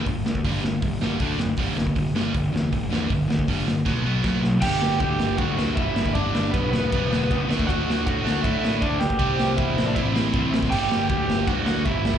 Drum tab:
CC |----------------|----------------|----------------|x---------------|
RD |----------------|----------------|----------------|----x---x---x---|
HH |o---o---o---o---|o---o---o---o---|o---o-----------|----------------|
SD |--o---o---o---o-|--o---o---o---o-|--o---o-o---o-o-|--o---o---o---o-|
BD |o--oo---o---o---|o--oo---o---o---|o--oo---o---o---|o---o---o---o--o|

CC |----------------|----------------|----------------|x---------------|
RD |x---x---x---x---|x---x---x---x---|x---x---x---x---|----x---x---x---|
HH |----------------|----------------|----------------|----------------|
SD |--o---o---o---o-|--o---o---o---o-|--o---o---o---o-|--o---o---o---o-|
BD |o---o---o---o--o|o---o---o---o--o|o---o---o---o--o|o---o---o---o--o|